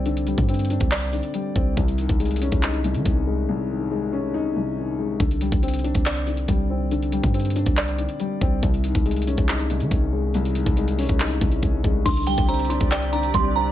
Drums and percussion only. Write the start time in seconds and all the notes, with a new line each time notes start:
0.06 closed hi-hat
0.17 closed hi-hat
0.27 closed hi-hat
0.38 kick, closed hi-hat
0.49 closed hi-hat
0.54 closed hi-hat
0.59 closed hi-hat
0.65 closed hi-hat
0.70 closed hi-hat
0.80 kick, closed hi-hat
0.91 clap, closed hi-hat
1.02 closed hi-hat
1.13 closed hi-hat
1.23 closed hi-hat
1.34 closed hi-hat
1.56 kick
1.77 kick, closed hi-hat
1.88 closed hi-hat
1.98 closed hi-hat
2.09 kick, closed hi-hat
2.20 closed hi-hat
2.25 closed hi-hat
2.31 closed hi-hat
2.36 closed hi-hat
2.42 closed hi-hat
2.52 kick, closed hi-hat
2.63 clap, closed hi-hat
2.74 closed hi-hat
2.84 closed hi-hat
2.94 closed hi-hat
3.05 kick, closed hi-hat
5.20 kick, closed hi-hat
5.31 closed hi-hat
5.41 closed hi-hat
5.52 kick, closed hi-hat
5.63 closed hi-hat
5.68 closed hi-hat
5.74 closed hi-hat
5.79 closed hi-hat
5.84 closed hi-hat
5.95 kick, closed hi-hat
6.06 clap, closed hi-hat
6.17 closed hi-hat
6.27 closed hi-hat
6.37 closed hi-hat
6.48 kick, closed hi-hat
6.91 closed hi-hat
7.03 closed hi-hat
7.12 closed hi-hat
7.24 kick, closed hi-hat
7.34 closed hi-hat
7.40 closed hi-hat
7.45 closed hi-hat
7.50 closed hi-hat
7.56 closed hi-hat
7.66 kick, closed hi-hat
7.77 clap, closed hi-hat
7.88 closed hi-hat
7.98 closed hi-hat
8.09 closed hi-hat
8.20 closed hi-hat
8.41 kick
8.63 kick, closed hi-hat
8.74 closed hi-hat
8.84 closed hi-hat
8.95 kick, closed hi-hat
9.06 closed hi-hat
9.11 closed hi-hat
9.16 closed hi-hat
9.22 closed hi-hat
9.27 closed hi-hat
9.37 kick, closed hi-hat
9.49 clap, closed hi-hat
9.59 closed hi-hat
9.70 closed hi-hat
9.80 closed hi-hat
9.91 kick, closed hi-hat
10.34 closed hi-hat
10.45 closed hi-hat
10.55 closed hi-hat
10.66 kick, closed hi-hat
10.77 closed hi-hat
10.88 closed hi-hat
10.99 closed hi-hat, open hi-hat
11.09 kick, closed hi-hat
11.20 clap, closed hi-hat
11.31 closed hi-hat
11.41 kick, closed hi-hat
11.52 closed hi-hat
11.62 kick, closed hi-hat
11.84 kick
12.06 kick, closed hi-hat, crash
12.17 closed hi-hat
12.27 closed hi-hat
12.38 kick, closed hi-hat
12.49 closed hi-hat
12.54 closed hi-hat
12.59 closed hi-hat
12.65 closed hi-hat
12.70 closed hi-hat
12.80 kick, closed hi-hat
12.91 clap, closed hi-hat
13.02 closed hi-hat
13.13 closed hi-hat
13.23 closed hi-hat
13.34 kick, closed hi-hat